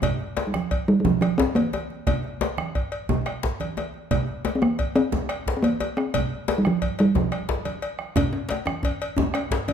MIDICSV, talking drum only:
0, 0, Header, 1, 2, 480
1, 0, Start_track
1, 0, Tempo, 338792
1, 33, Time_signature, 12, 3, 24, 8
1, 13787, End_track
2, 0, Start_track
2, 0, Title_t, "Talking drum"
2, 0, Program_c, 0, 116
2, 665, Note_on_c, 0, 55, 55
2, 775, Note_on_c, 0, 53, 72
2, 796, Note_off_c, 0, 55, 0
2, 1249, Note_on_c, 0, 55, 79
2, 1271, Note_off_c, 0, 53, 0
2, 1417, Note_off_c, 0, 55, 0
2, 1417, Note_on_c, 0, 55, 59
2, 1483, Note_on_c, 0, 53, 77
2, 1504, Note_off_c, 0, 55, 0
2, 1707, Note_off_c, 0, 53, 0
2, 1715, Note_on_c, 0, 53, 73
2, 1944, Note_off_c, 0, 53, 0
2, 1954, Note_on_c, 0, 60, 95
2, 2198, Note_on_c, 0, 58, 84
2, 2219, Note_off_c, 0, 60, 0
2, 2745, Note_off_c, 0, 58, 0
2, 6452, Note_on_c, 0, 60, 62
2, 6543, Note_on_c, 0, 58, 76
2, 6564, Note_off_c, 0, 60, 0
2, 7020, Note_on_c, 0, 60, 100
2, 7042, Note_off_c, 0, 58, 0
2, 7261, Note_off_c, 0, 60, 0
2, 7887, Note_on_c, 0, 60, 57
2, 7969, Note_on_c, 0, 58, 79
2, 7991, Note_off_c, 0, 60, 0
2, 8449, Note_off_c, 0, 58, 0
2, 8457, Note_on_c, 0, 60, 91
2, 8566, Note_off_c, 0, 60, 0
2, 9324, Note_on_c, 0, 55, 67
2, 9445, Note_on_c, 0, 53, 82
2, 9466, Note_off_c, 0, 55, 0
2, 9918, Note_on_c, 0, 55, 93
2, 9940, Note_off_c, 0, 53, 0
2, 10142, Note_off_c, 0, 55, 0
2, 10151, Note_on_c, 0, 53, 77
2, 11042, Note_off_c, 0, 53, 0
2, 13787, End_track
0, 0, End_of_file